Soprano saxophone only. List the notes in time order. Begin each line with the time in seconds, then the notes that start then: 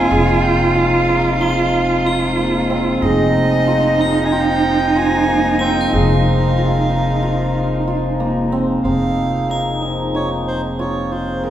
Already playing: G#5
0.43 G5
0.75 F5
2.94 F5
3.02 D#5
4.25 G#5
4.32 G5
4.97 G#5
5.61 G5
5.94 F5
8.84 F5
10.16 C#5
10.48 C5
10.80 C#5
11.12 C5
11.44 A#4